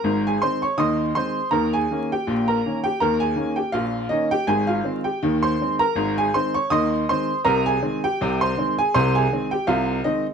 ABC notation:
X:1
M:2/4
L:1/16
Q:"Swing 16ths" 1/4=81
K:Ab
V:1 name="Upright piano"
[Bb] [Aa] [cc'] [dd'] [ec'e']2 [cc']2 | [Bb] [Aa]2 [Gg]2 [Bb]2 [Gg] | [Bb] [Aa]2 [Gg] [Ff]2 [Ee] [Gg] | [Aa] [Ff]2 [Gg]2 [cc']2 [Bb]- |
[Bb] [Aa] [cc'] [dd'] [ec'e']2 [cc']2 | [Bb] [Aa]2 [Gg]2 [cc']2 [Aa] | [cc'] [Aa]2 [Gg] [Ff]2 [Ee] z |]
V:2 name="Upright piano" clef=bass
[A,,,A,,]2 [E,A,C]2 [E,,E,]2 [E,A,C]2 | [E,,E,]2 [E,B,D]2 [B,,,B,,]2 [E,B,D]2 | [E,,E,]2 [E,B,D]2 [B,,,B,,]2 [E,B,D]2 | [A,,,A,,]2 [E,A,C]2 [E,,E,]2 [E,A,C]2 |
[A,,,A,,]2 [E,A,C]2 [E,,E,]2 [E,A,C]2 | [C,,C,]2 [E,A,C]2 [C,,C,]2 [E,A,C]2 | [C,,C,]2 [E,A,C]2 [C,,C,]2 [E,A,C]2 |]